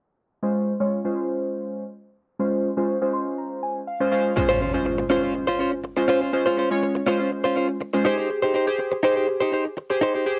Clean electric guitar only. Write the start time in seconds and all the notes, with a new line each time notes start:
4.36 muted clean electric guitar stroke
4.49 C#4 F4 C5
4.60 C#4 F4 C5
4.74 muted clean electric guitar stroke
4.85 muted clean electric guitar stroke
4.98 muted clean electric guitar stroke
5.10 C#4 F4 C5
5.23 C#4 F4 C5
5.34 muted clean electric guitar stroke
5.47 C#4 F4 C5
5.59 C#4 F4 C5
5.72 muted clean electric guitar stroke
5.84 muted clean electric guitar stroke
5.97 muted clean electric guitar stroke
6.08 C#4 F4 C5
6.21 C#4 F4 C5
6.33 muted clean electric guitar stroke
6.46 C#4 F4 C5
6.57 C#4 F4 C5
6.70 muted clean electric guitar stroke
6.82 muted clean electric guitar stroke
6.95 muted clean electric guitar stroke
7.06 C#4 F4 C5
7.19 C#4 F4 C5
7.31 muted clean electric guitar stroke
7.44 C#4 F4 C5
7.56 C#4 F4 C5
7.69 muted clean electric guitar stroke
7.81 muted clean electric guitar stroke
7.93 muted clean electric guitar stroke
8.05 D#4 G4 C5
8.18 D#4 G4 C5
8.30 muted clean electric guitar stroke
8.42 D#4 G4 C5
8.54 D#4 G4 C5
8.67 muted clean electric guitar stroke
8.79 muted clean electric guitar stroke
8.92 muted clean electric guitar stroke
9.03 D#4 G4 C5
9.16 D#4 G4 C5
9.28 muted clean electric guitar stroke
9.41 D#4 G4 C5
9.52 D#4 G4 C5
9.65 muted clean electric guitar stroke
9.77 muted clean electric guitar stroke
9.90 muted clean electric guitar stroke
10.01 D#4 G4 C5
10.15 D#4 G4 C5
10.26 muted clean electric guitar stroke